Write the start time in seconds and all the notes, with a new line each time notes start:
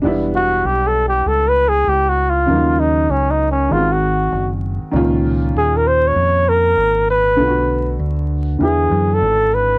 0.02 E1 G3 B3 D4
0.06 E4
0.35 F#4
0.65 B1 G4
0.87 A4
1.08 G4
1.26 C#2 A4
1.48 B4
1.69 G#4
1.87 C#2 G4
2.09 F#4
2.30 F4
2.46 D#2 C#3 F3 A#3
2.50 F#3 D#4
2.80 D#4
3.09 C#2 C#4
3.31 D#4
3.51 C#4
3.69 G#1 D#3 G#3 B3 F4
3.73 F#4
3.78 C4
3.92 F#4
4.32 F#1
4.83 muted fingered electric bass stroke
4.92 C#2 A#2 D#3 C#4
4.96 F4
5.54 D#2 G#4
5.77 A#4
5.87 C5
6.08 C#5
6.16 F2
6.49 A#4
6.77 G#1
7.10 B4
7.36 B1 D3 A3 B3
7.41 F4
7.47 F#4
7.99 D2
8.59 E2 D3 E3 B3
8.63 E4 G#4
8.91 F#2
9.14 A4
9.22 G#1
9.54 B4